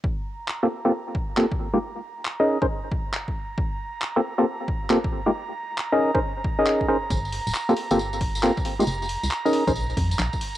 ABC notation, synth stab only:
X:1
M:4/4
L:1/16
Q:"Swing 16ths" 1/4=136
K:Gphr
V:1 name="Synth stab"
z4 z [B,CFG=A] z [B,CFGA] z4 [B,CFGA] z2 [_A,B,EFG] | z4 z [^CEABe]2 [_DEAB=c] z8 | z4 z [B,CFG=A] z [B,CFGA] z4 [B,CFGA] z2 [_A,B,EFG] | z4 z [^CEABe]2 [_DEAB=c] z3 [DEABe]3 [DEABc] z |
z4 z [B,CFG=A] z [B,CFGA] z4 [B,CFGA] z2 [_A,B,EFG] | z4 z [^CEABe]2 [_DEAB=c] z8 |]